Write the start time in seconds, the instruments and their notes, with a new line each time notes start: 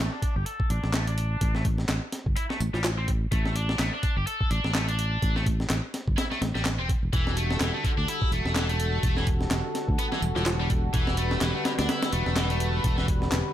0.12 distorted electric guitar D4
0.22 distorted electric guitar D4, kick, closed hi-hat
0.36 fingered electric bass G1, distorted electric guitar G4
0.46 distorted electric guitar A4, closed hi-hat
0.60 kick
0.70 fingered electric bass A1, distorted electric guitar D4, closed hi-hat
0.84 fingered electric bass A1, snare
0.94 distorted electric guitar A3, snare, clap, closed hi-hat
1.07 distorted electric guitar D4, closed hi-hat
1.18 closed hi-hat
1.41 fingered electric bass A1, kick, closed hi-hat
1.55 distorted electric guitar A3, snare
1.65 kick, closed hi-hat
1.78 snare
1.89 fingered electric bass A1, snare, clap, closed hi-hat
2.12 snare, closed hi-hat
2.26 fingered electric bass G1, kick
2.36 distorted electric guitar E4, closed hi-hat
2.50 distorted electric guitar A3, snare
2.60 fingered electric bass A1, closed hi-hat
2.74 fingered electric bass A1, distorted electric guitar G3, snare
2.84 snare, clap, closed hi-hat
2.98 distorted electric guitar C4
3.08 kick, closed hi-hat
3.32 fingered electric bass A1, distorted electric guitar A3, kick, closed hi-hat
3.46 snare
3.56 distorted electric guitar D4, closed hi-hat
3.69 snare
3.79 fingered electric bass A1, distorted electric guitar A3, snare, clap, closed hi-hat
3.93 distorted electric guitar D4
4.03 distorted electric guitar D4, kick, closed hi-hat
4.16 fingered electric bass G1, distorted electric guitar G4
4.27 distorted electric guitar A4, closed hi-hat
4.41 kick
4.51 fingered electric bass A1, distorted electric guitar D4, closed hi-hat
4.64 fingered electric bass A1, snare
4.75 distorted electric guitar A3, snare, clap, closed hi-hat
4.88 distorted electric guitar D4, closed hi-hat
4.99 closed hi-hat
5.22 fingered electric bass A1, kick, closed hi-hat
5.36 distorted electric guitar A3, snare
5.46 kick, closed hi-hat
5.60 snare
5.70 fingered electric bass A1, snare, clap, closed hi-hat
5.94 snare, closed hi-hat
6.07 fingered electric bass G1, kick
6.18 distorted electric guitar E4, snare, closed hi-hat
6.32 distorted electric guitar A3, snare
6.41 fingered electric bass A1, snare, closed hi-hat
6.55 fingered electric bass A1, distorted electric guitar G3, snare
6.65 snare, clap, closed hi-hat
6.79 fingered electric bass E1, distorted electric guitar C4
6.89 kick, closed hi-hat
7.03 fingered electric bass E1
7.12 fingered electric bass E1, analog synth pad D3 G3 F#4 A4, distorted electric guitar E3, kick, closed hi-hat
7.27 snare
7.37 distorted electric guitar A3, closed hi-hat
7.51 snare
7.60 fingered electric bass E1, distorted electric guitar E3, snare, clap, closed hi-hat
7.74 distorted electric guitar A3
7.84 distorted electric guitar D3, kick, closed hi-hat
7.98 fingered electric bass D2, distorted electric guitar D4
8.08 distorted electric guitar E4, closed hi-hat
8.22 kick
8.32 fingered electric bass E1, distorted electric guitar A3, closed hi-hat
8.45 fingered electric bass E1, snare
8.56 distorted electric guitar E3, snare, clap, closed hi-hat
8.69 distorted electric guitar A3, closed hi-hat
8.80 closed hi-hat
9.03 fingered electric bass E1, kick, closed hi-hat
9.17 distorted electric guitar E3, snare
9.27 kick, closed hi-hat
9.41 snare
9.51 fingered electric bass E1, snare, clap, closed hi-hat
9.75 snare, closed hi-hat
9.88 fingered electric bass D2, kick
9.99 distorted electric guitar B3, closed hi-hat
10.12 distorted electric guitar E3, snare
10.22 fingered electric bass E1, closed hi-hat
10.36 fingered electric bass E1, distorted electric guitar D3, snare
10.46 snare, clap, closed hi-hat
10.60 distorted electric guitar G3
10.70 kick, closed hi-hat
10.93 fingered electric bass E1, distorted electric guitar E3, analog synth pad B4, kick, closed hi-hat
11.07 snare
11.17 distorted electric guitar A3, closed hi-hat
11.31 snare
11.41 fingered electric bass E1, distorted electric guitar E3, snare, clap, closed hi-hat
11.55 distorted electric guitar A3
11.65 distorted electric guitar D3, snare, closed hi-hat
11.79 fingered electric bass D2, distorted electric guitar D4, snare, closed hi-hat
11.89 distorted electric guitar E4, snare, closed hi-hat
12.03 snare, closed hi-hat
12.12 fingered electric bass E1, distorted electric guitar A3, closed hi-hat
12.26 fingered electric bass E1, snare
12.36 distorted electric guitar E3, snare, clap, closed hi-hat
12.50 distorted electric guitar A3, closed hi-hat
12.60 closed hi-hat
12.84 fingered electric bass E1, kick, closed hi-hat
12.97 distorted electric guitar E3, snare
13.08 kick, closed hi-hat
13.22 snare
13.32 fingered electric bass E1, snare, clap, closed hi-hat